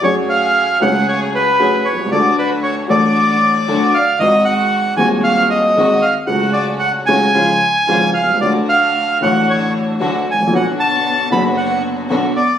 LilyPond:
<<
  \new Staff \with { instrumentName = "Bandoneon" } { \time 4/4 \key fis \minor \tempo 4 = 114 cis''8 eis''4 fis''8 cis''8 b'4 cis''8 | d''8 b'8 cis''8 d''2 eis''8 | dis''8 fis''4 gis''8 eis''8 dis''4 eis''8 | fis''8 d''8 fis''8 gis''2 eis''8 |
d''8 eis''4 fis''8 cis''8 r4 gis''8 | fis''8 a''4 b''8 fis''8 r4 d''8 | }
  \new Staff \with { instrumentName = "String section" } { \time 4/4 \key fis \minor <a fis' gis'>4. <a fis' gis'>4. <a fis' gis'>8 r8 | <a d' fis'>4. <a d' fis'>4. <a d' fis'>8 r8 | <gis bis fis'>4. <gis bis fis'>4. <gis bis fis'>8 r8 | <cis a cis' fis'>4. <cis a cis' fis'>8 <gis cis' eis'>8 r8 <gis cis' eis'>8 r8 |
<a d' fis'>4. <a d' fis'>4. <a d' fis'>8 r8 | <b d' fis'>4. <b d' fis'>4. <b d' fis'>8 r8 | }
  \new Staff \with { instrumentName = "Grand piano" } { \clef bass \time 4/4 \key fis \minor <fis, fis a cis' gis'>4. <cis, cis fis a cis' gis'>4. <fis, fis a cis' gis'>8 r32 b,,32 bis,,32 cis,32 | <d, d fis a d' a'>4. <a,, a, fis a d' a'>4. <d, d fis a d' a'>8 r8 | <gis,, gis, dis gis bis fis'>4. <dis,, dis, dis gis bis fis'>4. <gis,, gis, dis gis bis fis'>8 r8 | <cis, cis fis a fis'>4. <cis, cis fis a fis'>8 <cis, cis eis gis eis'>8 r8 <gis,, gis, cis eis gis eis'>8 r32 b,,32 bis,,32 cis,32 |
<d, d fis a fis'>4. <a,, a, d fis a fis'>4. <d, d fis a fis'>8 r32 gis,,32 a,,32 ais,,32 | <b,, b, d fis b fis'>4. <fis,, fis, d fis b fis'>4. <b,, b, d fis b fis'>8 r8 | }
>>